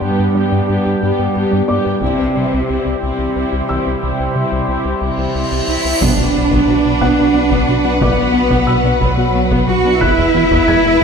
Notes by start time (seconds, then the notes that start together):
Already playing: G3 B3 D4 G4 C6
0.01 G2 G3 B3 G4
0.19 G2 G4
0.35 G3 B3 D4 G4
0.52 G2 G3
0.68 G2 B3 G4
0.85 G2 G4
1.01 G2 G3 B3 G4
1.19 G2 B3
1.35 G2 B3 G4
1.51 G2 G3
1.68 G2 B3 G4 D5 D6
1.85 G2 G4
2.00 C2 C3 G3 C4 E4 G4 C5, taiko
2.18 C2 C4
2.34 C3 G3 C4 E4
2.52 C2 C3
2.68 C2 C4 E4
2.85 C2 C4
3.02 C2 C3 C4 E4
3.19 C2 E3
3.35 C2 C4 E4
3.52 C2 C3
3.68 C2 E3 C4 E4 E6
3.86 C2 C4
4.01 C2 C3 C4 E4, cymbal swell
4.19 C2 C4
4.35 C3 G3 C4 E4
4.52 C2 C3
4.68 C2 C4 E4
4.85 C2 C4
5.01 C2 C3 C4 E4
5.18 C2 E3
5.34 C2 C4 E4
5.52 C2 C3
5.68 C2 E3 C4 E4
5.84 C2 C4
6.01 B1 B2 B3 D4 F#4 B4 F#5, taiko, impact
6.18 B1 B2 D4 F#4
6.34 B1 B3 D4 F#4
6.51 B1 B2 B3, taiko
6.68 B1 B2 D4 F#4
6.84 B1 B2 D4
7.01 B1 B2 B3 F#5 F#6, taiko
7.18 B1 B3 F#4
7.34 B1 B3 D4 F#4
7.50 B1 B2 B3, taiko
7.67 B1 B2 D4 F#4
7.84 B1 B3 D4 F#4
8.00 B1 B2 B3 D5 D6, taiko
8.17 B1 B2 D4 F#4
8.34 B1 B3 D4 F#4
8.50 B1 B2 B3, taiko
8.67 B1 B2 D4 F#4 E6
8.83 B1 B2 D4
9.00 B1 B2 F#3 B3, taiko
9.17 B1 B3 F#4
9.34 B1 B3 D4 F#4
9.50 B1 B2 B3, taiko
9.67 B1 B2 D4 F#4
9.84 B1 B3 D4 F#4
10.00 E1 E2 E3 B3 E4 G#4 B4 E5 F#6, taiko
10.17 E2 G#3 G#4
10.34 E2 E3 B3 E4
10.51 E2 E3 B3, taiko
10.67 E2 G#3 G#4 G#6
10.84 E2 G#3 E4
11.01 E2